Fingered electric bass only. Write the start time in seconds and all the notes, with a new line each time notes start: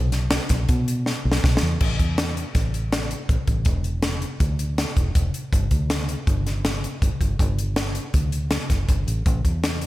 Already playing: B1
0.50 B1
0.69 B2
1.25 B1
1.44 B1
1.62 E2
1.81 A1
1.99 E2
2.55 A1
3.29 A1
3.48 A1
3.66 E1
4.40 D2
4.97 E1
5.15 E1
5.53 G1
5.71 D2
6.27 G1
7.02 G1
7.21 G1
7.39 G1
8.14 D2
8.70 F#1
8.89 G1
9.07 A1
9.26 A1
9.45 E2